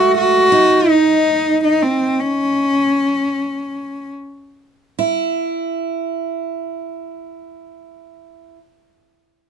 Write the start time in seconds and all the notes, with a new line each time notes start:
Already playing: G#3 A3 F#4
0.18 F#4
0.52 D#4
0.89 D#4
1.64 D#4
1.83 C4
2.20 C#4
4.99 E4